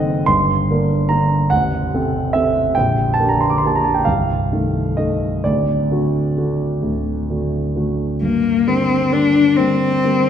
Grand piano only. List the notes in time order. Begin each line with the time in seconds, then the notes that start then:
Already playing: F#1 F#2 D#3 C4 A4 D#5 F#5
0.26 G1 G2 C6
0.71 D3 A#3 A#4
1.09 D3 A#3 A#4 A#5
1.50 A0 A1 F#5
1.94 C3 C4 A4
2.33 C3 C4 A4 E5
2.75 A#0 A#1 G5
3.14 A5
3.20 D3 A#3 G4
3.29 A#5
3.41 C6
3.50 D6
3.58 C6
3.65 D3 A#3 G4 A5
3.76 A#5
3.84 A5
3.94 G5
4.05 C1 C2 F5
4.53 D#3 A3 A4
4.97 D#3 A3 A4 D#5
5.44 D1 D2 D5
5.91 D3 A3 F#4
6.37 D3 A3 F#4
6.83 D1 D2
7.30 D3 A3 F#4
7.76 D3 A3 F#4
8.22 G2
8.67 D3 G3 A#3
9.12 D3 G3 A#3
9.57 D3 G3 A#3
10.04 D3 G3 A#3